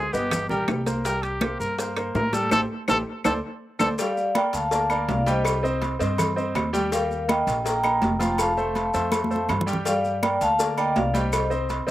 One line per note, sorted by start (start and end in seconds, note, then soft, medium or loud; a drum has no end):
0.00 0.14 G#4 medium
0.13 0.48 G1 medium
0.13 0.43 B3 medium
0.13 0.48 G4 medium
0.13 0.44 B4 medium
0.13 0.44 D#5 medium
0.13 high bongo soft
0.13 high conga soft
0.13 maracas medium
0.31 high bongo medium
0.31 high conga soft
0.31 low conga medium
0.31 high timbale loud
0.31 claves medium
0.31 maracas medium
0.49 0.67 A#1 medium
0.49 0.80 G3 medium
0.49 0.80 G4 medium
0.49 0.67 A#4 medium
0.49 0.81 G5 medium
0.49 high bongo soft
0.49 high conga soft
0.49 low conga medium
0.49 maracas soft
0.68 1.54 C2 medium
0.68 high bongo soft
0.68 low bongo medium
0.68 high conga medium
0.68 high timbale medium
0.68 low timbale medium
0.68 claves medium
0.68 maracas soft
0.86 1.02 A#3 medium
0.86 1.02 A#4 medium
0.86 1.02 C5 medium
0.86 high bongo soft
0.86 high conga medium
0.86 high timbale medium
0.86 maracas medium
1.04 1.35 G3 medium
1.04 1.35 G4 medium
1.04 1.24 A#4 medium
1.04 1.35 G5 medium
1.04 high bongo medium
1.04 high conga soft
1.04 high timbale medium
1.04 maracas medium
1.23 1.59 G4 medium
1.23 high conga soft
1.23 high timbale medium
1.23 maracas soft
1.41 1.72 A#3 medium
1.41 1.72 A#4 medium
1.41 1.72 C5 medium
1.41 high bongo medium
1.41 high conga loud
1.41 high timbale medium
1.41 low timbale medium
1.41 claves medium
1.41 maracas soft
1.59 2.11 G2 medium
1.59 1.77 A#4 medium
1.59 high bongo soft
1.59 high conga soft
1.59 maracas medium
1.78 1.94 A#3 medium
1.78 1.94 A#4 medium
1.78 1.94 C5 medium
1.78 high bongo medium
1.78 high conga soft
1.78 high timbale medium
1.78 maracas medium
1.96 2.27 A#3 medium
1.96 2.27 A#4 medium
1.96 2.27 C5 medium
1.96 high bongo soft
1.96 high conga soft
1.96 high timbale medium
1.96 claves medium
1.96 maracas soft
2.15 2.49 A2 medium
2.15 2.35 A#4 medium
2.15 high bongo soft
2.15 low bongo medium
2.15 high conga medium
2.15 low timbale medium
2.15 maracas soft
2.33 2.48 G3 medium
2.33 2.48 G4 medium
2.33 2.51 A4 medium
2.33 2.49 G5 medium
2.33 high bongo soft
2.33 high conga medium
2.33 high timbale medium
2.33 maracas medium
2.51 2.65 A1 medium
2.51 2.63 G4 medium
2.51 2.63 A4 medium
2.51 2.61 A4 loud
2.51 2.63 C5 medium
2.51 low bongo loud
2.51 high conga loud
2.51 high timbale loud
2.51 claves loud
2.51 maracas medium
2.88 3.02 A1 loud
2.88 3.00 G4 medium
2.88 3.00 A4 medium
2.88 2.98 A4 loud
2.88 3.00 C5 medium
2.88 low bongo medium
2.88 high conga loud
2.88 high timbale loud
2.88 claves loud
2.88 maracas medium
3.24 3.39 D2 medium
3.24 3.34 A4 medium
3.24 3.37 A4 medium
3.24 3.37 C5 loud
3.24 3.37 D5 loud
3.24 low bongo loud
3.24 high conga loud
3.24 high timbale loud
3.24 claves loud
3.24 maracas medium
3.79 3.94 D2 medium
3.79 3.88 A4 medium
3.79 3.92 A4 medium
3.79 3.92 C5 medium
3.79 3.92 D5 medium
3.79 low bongo loud
3.79 high conga loud
3.79 high timbale medium
3.79 claves loud
3.79 maracas loud
3.98 4.29 G3 medium
3.98 4.29 G4 medium
3.98 4.33 D5 medium
3.98 4.34 F5 loud
3.98 4.29 G5 medium
3.98 cowbell loud
3.98 low agogo medium
3.98 maracas loud
4.17 high conga soft
4.17 maracas soft
4.35 4.65 A#3 medium
4.35 4.66 A#4 medium
4.35 4.44 D5 medium
4.35 4.66 D5 medium
4.35 4.44 G5 loud
4.35 cowbell medium
4.35 high conga loud
4.35 low timbale medium
4.35 low agogo loud
4.35 claves medium
4.35 maracas soft
4.53 5.05 D2 medium
4.53 5.05 F5 medium
4.53 5.05 A5 loud
4.53 cowbell medium
4.53 high conga soft
4.53 low agogo medium
4.53 maracas medium
4.71 4.87 A#3 medium
4.71 4.87 A#4 medium
4.71 4.87 D5 medium
4.71 cowbell loud
4.71 high conga soft
4.71 maracas medium
4.90 5.20 A#3 medium
4.90 5.20 A#4 medium
4.90 5.21 D5 medium
4.90 high conga soft
4.90 low agogo loud
4.90 claves medium
4.90 maracas soft
5.08 5.95 C2 loud
5.08 5.17 D5 medium
5.08 5.17 F5 medium
5.08 cowbell medium
5.08 high conga medium
5.08 low timbale medium
5.08 maracas soft
5.26 5.57 G3 medium
5.26 5.57 G4 loud
5.26 5.79 C5 medium
5.26 5.79 D#5 medium
5.26 5.57 G5 medium
5.26 cowbell medium
5.26 high conga medium
5.26 low agogo medium
5.26 maracas medium
5.45 cowbell loud
5.45 high conga soft
5.45 low agogo loud
5.45 claves medium
5.45 maracas medium
5.63 5.93 C4 medium
5.63 5.94 C5 medium
5.63 5.94 D#5 loud
5.63 high conga soft
5.63 maracas soft
5.82 cowbell medium
5.82 high conga medium
5.82 low timbale medium
5.82 low agogo medium
5.82 maracas soft
5.99 6.52 G2 medium
5.99 6.30 C4 medium
5.99 6.30 C5 medium
5.99 6.30 D#5 medium
5.99 cowbell medium
5.99 high conga soft
5.99 maracas medium
6.18 cowbell loud
6.18 high conga soft
6.18 low conga medium
6.18 low agogo loud
6.18 claves medium
6.18 maracas medium
6.36 6.67 C4 medium
6.36 6.67 C5 medium
6.36 6.67 D#5 medium
6.36 high conga soft
6.36 maracas soft
6.55 7.41 D#2 loud
6.55 cowbell medium
6.55 high conga medium
6.55 low timbale medium
6.55 low agogo loud
6.55 claves medium
6.55 maracas soft
6.73 6.88 G3 loud
6.73 6.89 G4 loud
6.73 6.89 G5 loud
6.73 cowbell medium
6.73 high conga medium
6.73 maracas medium
6.91 7.22 G3 medium
6.91 7.22 G4 medium
6.91 7.27 A#4 medium
6.91 7.27 F5 loud
6.91 7.22 G5 medium
6.91 cowbell loud
6.91 high conga soft
6.91 low agogo medium
6.91 maracas loud
7.11 high conga soft
7.11 maracas soft
7.28 7.59 A#3 medium
7.28 7.59 A#4 medium
7.28 7.59 D#5 medium
7.28 7.63 D#5 medium
7.28 7.63 G5 loud
7.28 cowbell medium
7.28 high conga loud
7.28 low timbale medium
7.28 low agogo loud
7.28 claves medium
7.28 maracas soft
7.47 7.98 A#1 loud
7.47 cowbell medium
7.47 high conga soft
7.47 low agogo medium
7.47 maracas medium
7.64 7.80 A#3 medium
7.64 7.81 A#4 medium
7.64 7.80 D#5 medium
7.64 8.35 G5 medium
7.64 8.36 A#5 loud
7.64 cowbell loud
7.64 high conga soft
7.64 maracas medium
7.83 8.14 A#3 medium
7.83 8.14 A#4 medium
7.83 8.14 D#5 medium
7.83 high conga soft
7.83 low agogo loud
7.83 claves medium
7.83 maracas soft
8.02 8.88 F1 medium
8.02 cowbell medium
8.02 high conga medium
8.02 low timbale medium
8.02 maracas soft
8.19 8.50 F3 medium
8.19 8.50 F4 medium
8.19 8.51 F5 medium
8.19 cowbell medium
8.19 high conga medium
8.19 low agogo medium
8.19 maracas medium
8.38 9.45 F5 medium
8.38 9.46 A5 loud
8.38 cowbell loud
8.38 low agogo loud
8.38 claves medium
8.38 maracas medium
8.57 8.87 A3 medium
8.57 8.88 A4 medium
8.57 8.88 C5 medium
8.57 high conga soft
8.57 maracas soft
8.75 cowbell medium
8.75 high conga medium
8.75 low timbale medium
8.75 low agogo medium
8.75 maracas soft
8.93 9.45 F2 loud
8.93 9.24 A3 medium
8.93 9.24 A4 medium
8.93 9.24 C5 medium
8.93 cowbell medium
8.93 high conga soft
8.93 maracas medium
9.12 cowbell loud
9.12 high conga loud
9.12 low agogo loud
9.12 claves medium
9.12 maracas medium
9.24 high conga loud
9.30 9.61 A3 medium
9.30 9.61 A4 medium
9.30 9.61 C5 medium
9.30 maracas soft
9.36 high conga medium
9.49 10.35 G2 medium
9.49 cowbell medium
9.49 low conga medium
9.49 low timbale medium
9.49 low agogo loud
9.49 claves medium
9.49 maracas soft
9.61 low conga loud
9.66 9.82 G3 medium
9.66 9.82 G4 medium
9.66 9.82 G5 medium
9.66 cowbell medium
9.66 maracas medium
9.73 low conga medium
9.85 10.16 G3 medium
9.85 10.16 G4 medium
9.85 10.20 D5 medium
9.85 10.20 F5 loud
9.85 10.16 G5 medium
9.85 cowbell loud
9.85 high conga soft
9.85 low agogo medium
9.85 maracas medium
10.04 high conga soft
10.04 maracas soft
10.23 10.53 A#3 medium
10.23 10.53 A#4 medium
10.23 10.53 D5 medium
10.23 10.32 D5 medium
10.23 10.31 G5 loud
10.23 cowbell medium
10.23 high conga loud
10.23 low timbale medium
10.23 low agogo loud
10.23 claves medium
10.23 maracas soft
10.41 10.92 D2 medium
10.41 10.76 F5 medium
10.41 10.79 A5 loud
10.41 cowbell medium
10.41 high conga soft
10.41 low agogo medium
10.41 maracas medium
10.59 10.74 A#3 medium
10.59 10.74 A#4 medium
10.59 10.74 D5 medium
10.59 cowbell loud
10.59 high conga soft
10.59 maracas medium
10.77 11.08 A#3 medium
10.77 11.08 A#4 medium
10.77 11.08 D5 medium
10.77 10.87 D#5 medium
10.77 10.86 G5 loud
10.77 high conga soft
10.77 low agogo loud
10.77 claves medium
10.77 maracas soft
10.96 11.82 C2 loud
10.96 11.14 D5 medium
10.96 11.13 F5 medium
10.96 cowbell medium
10.96 high conga medium
10.96 low timbale medium
10.96 maracas soft
11.13 11.44 G3 medium
11.13 11.44 G4 loud
11.13 11.67 C5 medium
11.13 11.66 D#5 medium
11.13 11.44 G5 medium
11.13 cowbell medium
11.13 high conga medium
11.13 low agogo medium
11.13 maracas medium
11.33 cowbell loud
11.33 low agogo loud
11.33 claves medium
11.33 maracas medium
11.50 11.81 C4 medium
11.50 11.81 C5 medium
11.50 11.81 D#5 medium
11.50 high conga soft
11.50 maracas soft
11.69 cowbell medium
11.69 high conga medium
11.69 low timbale medium
11.69 low agogo medium
11.69 maracas soft
11.87 11.91 C4 medium
11.87 11.91 C5 medium
11.87 11.91 D#5 medium